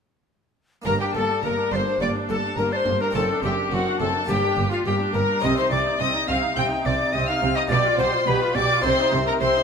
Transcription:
0.82 harpsichord A#3 D4, viola section A#3, recorder A#4, violin section A#4
0.86 double bass section G1, harpsichord G2, cello section G2, violin section A#5
1.00 viola section D4, recorder G4, violin section G4 G5
1.15 double bass section G1, harpsichord G2, cello section G2, viola section A#3, recorder A4, violin section A4 A5
1.30 viola section D4
1.43 double bass section G1, harpsichord G2, cello section G2, viola section A#3, violin section A#4 A#5, recorder A#4
1.58 viola section D4
1.72 double bass section G1, harpsichord G2, cello section G2, viola section A#3, violin section C5 C6, recorder D5
1.76 recorder C5
1.86 viola section D4
2.00 double bass section G1, cello section G2, harpsichord G2, viola section A#3, recorder D5, violin section D5 D6
2.15 viola section D4
2.29 double bass section G1, harpsichord G2, cello section G2, viola section A#3, violin section A4 A5, recorder A4
2.43 viola section D4
2.58 double bass section G1, harpsichord G2, cello section G2, viola section A#3, violin section A#4 A#5, recorder A#4
2.72 viola section D4, violin section C5 C6, recorder D5
2.76 recorder C5
2.86 double bass section G1, harpsichord G2, cello section G2, viola section A#3
3.00 viola section D4, recorder A#4, violin section A#4 A#5
3.11 harpsichord C4 D4
3.15 double bass section F#1, harpsichord F#2, cello section F#2, viola section C4, violin section A4 A5, recorder A4
3.30 viola section D4
3.43 double bass section F#1, harpsichord F#2, cello section F#2, viola section C4, recorder G4, violin section G4 G5
3.58 viola section D4
3.71 double bass section F#1, harpsichord F#2, cello section F#2, viola section C4, violin section F#4 F#5, recorder F#4
3.87 viola section D4
4.00 double bass section F#1, harpsichord F#2, cello section F#2, viola section C4, violin section A4 A5, recorder A4
4.15 viola section D4
4.24 harpsichord A#3 D4 G4, viola section A#3, recorder G4
4.28 double bass section G1, harpsichord G2, cello section G2, violin section G4 G5
4.43 viola section D4
4.57 double bass section G1, harpsichord G2, cello section G2, viola section A#3
4.71 viola section D4, violin section F4 F5, recorder F4
4.85 double bass section G1, harpsichord G2, cello section G2, viola section A#3, recorder G4, violin section G4 G5
4.99 viola section D4
5.13 double bass section G1, cello section G2, harpsichord G2, viola section A#3, recorder A#4, violin section A#4 A#5
5.27 viola section D4
5.40 double bass section C2, harpsichord C3 D#4 G4, cello section C3, viola section C4, recorder D#5, violin section D#6
5.44 violin section D#5
5.57 viola section D#4, recorder C5, violin section C5 C6
5.71 double bass section C2, cello section C3, harpsichord C3, viola section C4, recorder D5, violin section D5 D6
5.85 viola section D#4
6.00 double bass section C2, harpsichord C3, cello section C3, viola section C4, recorder D#5, violin section D#5 D#6
6.14 viola section D#4
6.27 double bass section C2, harpsichord C3, cello section C3, viola section C4, recorder F5, violin section F5 F6
6.42 viola section D#4
6.56 double bass section C2, harpsichord C3, cello section C3, viola section C4, recorder G5, violin section G5 G6
6.70 viola section D#4
6.84 double bass section C2, harpsichord C3, cello section C3, viola section C4, recorder D5, violin section D5 D6
6.99 viola section D#4
7.13 double bass section C2, harpsichord C3, cello section C3, viola section C4, recorder D#5, violin section D#5 D#6
7.27 viola section D#4, recorder F5, violin section F5 F6
7.42 double bass section C2, cello section C3, harpsichord C3, viola section C4
7.56 viola section D#4, recorder D#5, violin section D#5 D#6
7.68 double bass section B1, cello section B2, harpsichord B2 F4 G4, viola section G4, recorder D5, violin section D5
7.72 violin section D6
7.84 viola section F4
7.98 double bass section B1, cello section B2, harpsichord B2, viola section G4, violin section C5 C6, recorder C5
8.13 viola section F4
8.27 double bass section B1, cello section B2, harpsichord B2, viola section G4, recorder B4, violin section B4 B5
8.41 viola section F4
8.55 double bass section B1, cello section B2, harpsichord B2, viola section G4, recorder D5, violin section D5 D6
8.70 viola section F4
8.81 double bass section C2, cello section C3, harpsichord C3 D#4 G4, viola section C4, violin section C5 C6, recorder C5
8.98 viola section D#4
9.12 double bass section C2, harpsichord C3, cello section C3, viola section C4
9.26 viola section D#4, recorder A#4, violin section A#4 A#5
9.40 double bass section C2, cello section C3, harpsichord C3, viola section C4, recorder C5, violin section C5 C6
9.55 viola section D#4

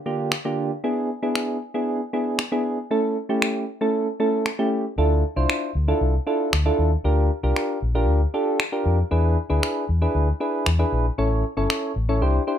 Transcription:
0.06 synth keys D3 A#3 D4 F4 G4
0.32 finger snap
0.45 synth keys D3 A#3 D4 F4 G4
0.84 synth keys B3 D4 E4 G#4
1.23 synth keys B3 D4 E4 G#4
1.35 finger snap
1.74 synth keys B3 D4 E4 G#4
2.13 synth keys B3 D4 E4 G#4
2.39 finger snap
2.52 synth keys B3 D4 E4 G#4
2.91 synth keys A3 C#4 E4 A4
3.29 synth keys A3 C#4 E4 G4
3.42 finger snap
3.81 synth keys A3 C#4 E4 A4
4.20 synth keys A3 C#4 E4 A4
4.46 finger snap
4.59 synth keys A3 C#4 E4 G4
4.98 fingered electric bass D2, synth keys D4 E4 F4 A4
5.36 fingered electric bass C2, synth keys D4 E4 F4 C5
5.50 finger snap
5.75 fingered electric bass D2
5.88 synth keys D4 E4 F4 A4
6.01 fingered electric bass C2
6.27 synth keys D4 E4 F4 A4
6.53 fingered electric bass D2, finger snap
6.65 synth keys D4 E4 F4 A4
6.79 fingered electric bass D#2
7.04 fingered electric bass D2, synth keys D4 F4 G4 A#4
7.43 fingered electric bass C2, synth keys D4 F4 G4 A#4
7.56 finger snap
7.82 fingered electric bass A#1
7.95 synth keys D4 F4 G4 A#4
8.08 fingered electric bass D2
8.34 synth keys D4 F4 G4 A4
8.60 finger snap
8.72 synth keys D4 F4 G4 A#4
8.86 fingered electric bass F2
9.11 fingered electric bass E2, synth keys D4 E4 G#4 B4
9.50 fingered electric bass D2, synth keys D4 E4 G#4 B4
9.63 finger snap
9.89 fingered electric bass E2
10.02 synth keys D4 E4 G#4 B4
10.15 fingered electric bass D2
10.40 synth keys D4 E4 G#4 B4
10.66 fingered electric bass E2, finger snap
10.79 synth keys D4 E4 G#4 B4
10.92 fingered electric bass A#1
11.18 fingered electric bass A1, synth keys C#4 E4 A4 C#5
11.57 fingered electric bass G1, synth keys C#4 E4 A4 C#5
11.70 finger snap
11.96 fingered electric bass A1
12.09 synth keys C#4 E4 A4 C#5
12.22 fingered electric bass C2, synth keys D4 E4 G4 C5
12.47 synth keys D4 E4 G4 C5

